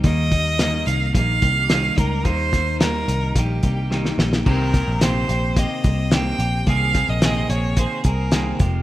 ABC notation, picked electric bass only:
X:1
M:4/4
L:1/16
Q:1/4=108
K:Ab
V:1 name="Picked electric bass" clef=bass
E,,6 C,,2 B,,,2 C,,4 D,,2 | E,,6 C,,2 B,,,2 C,,4 B,,,2 | C,,3 B,,,3 B,,,3 z C,,4 B,,,2 | C,,3 B,,,3 B,,,3 z C,,4 F,,,2 |]